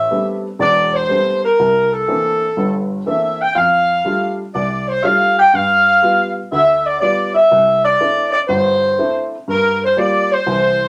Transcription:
Already playing: E5
0.11 G3 A3 B3 C4 D4
0.59 E1 E2 D5
0.94 C5
1.09 G3 A3 B3 C4 D4
1.45 A#4
1.59 C2
1.92 A4
2.08 E3 A3 A#3 C4 D4
2.57 G1 G2
3.06 E3 A3 A#3 C4 D4 E5
3.42 G5
3.56 F2 F5
4.05 G3 A3 D4 F4
4.54 C2 D5
4.89 C5
5.04 G3 A3 D4 F4 F5
5.39 G5
5.54 G2 F5
6.02 G3 B3 F4
6.52 D2 D3 E5
6.86 D5
7.01 G3 B3 F4 D5
7.35 E5
7.51 C2
7.84 D5
8.00 A3 C4 D4 E4
8.33 D5
8.48 G1 G2 C5
8.98 A3 C4 D4 E4
9.48 G2 A#4
9.85 C5
9.97 G3 A#3 F4 D5
10.32 C5
10.46 C2 E3

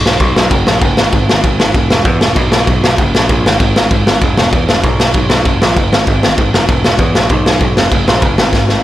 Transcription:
Already playing: B1
0.06 snare
0.20 B1, kick, crash
0.35 B1, snare
0.51 F#1, kick, crash
0.67 A#1, snare
0.81 F#1, kick, crash
0.97 G#1, snare
1.12 G#1, kick, crash
1.29 snare
1.44 G#1, kick, crash
1.59 G#1, snare
1.74 E1, kick, crash
1.90 E1, snare
2.05 E2, kick, crash
2.21 E1, snare
2.36 B1, kick, crash
2.52 snare
2.67 B1, kick, crash
2.83 B1, snare
2.98 F#1, kick, crash
3.15 A#1, snare
3.29 A#1, kick, crash
3.46 G#1, snare
3.60 G#1, kick, crash
3.76 snare
3.91 G#1, kick, crash
4.06 G#1, snare
4.21 E1, kick, crash
4.37 E1, snare
4.53 E2, kick, crash
4.68 E1, snare
4.84 B1, kick, crash
5.00 snare
5.14 B1, kick, crash
5.29 B1, snare
5.45 F#1, kick, crash
5.62 A#1, snare
5.76 F#1, kick, crash
5.92 G#1, snare
6.07 G#1, kick, crash
6.23 snare
6.38 G#1, kick, crash
6.53 F#1, snare
6.69 E1, kick, crash
6.84 E1, snare
6.99 E2, kick, crash
7.15 A#1, snare
7.29 B1, kick, crash
7.46 snare
7.60 B1, kick, crash
7.77 F1, snare
7.92 F#1, kick, crash
8.08 A#1, snare
8.22 G1, kick, crash
8.38 G#1, snare
8.53 G#1, kick, snare
8.69 snare

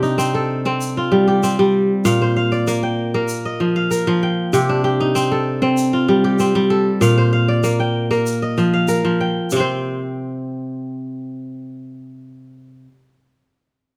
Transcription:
Already playing: C3 A#3 D4 G4 A#4 G5
0.03 D#4, shaker
0.18 C4, shaker
0.34 A4
0.66 C4
0.81 shaker
0.97 F4
1.12 G3
1.28 G4
1.43 C4, shaker
1.59 G3
2.05 A#2 F5, shaker
2.22 C5
2.36 F5
2.52 D5, shaker
2.67 A#3, shaker
2.83 G5
3.14 A#3 A#4
3.28 shaker
3.45 D#5
3.60 F3
3.76 F5
3.91 A#4, shaker
4.07 F3
4.23 G5
4.53 C3 G4, shaker
4.69 D4
4.84 G4
5.00 D#4
5.15 C4, shaker
5.32 A4
5.62 C4
5.77 shaker
5.93 F4
6.08 G3
6.24 G4
6.39 C4, shaker
6.55 G3
6.70 A4
7.01 A#2 F5, shaker
7.18 C5
7.33 F5
7.48 D5
7.64 A#3, shaker
7.80 G5
8.11 A#3 A#4, shaker
8.26 shaker
8.42 D#5
8.57 F3, shaker
8.74 F5
8.88 A#4, shaker
9.05 F3
9.21 G5
9.50 C3, shaker
9.56 C4 C5

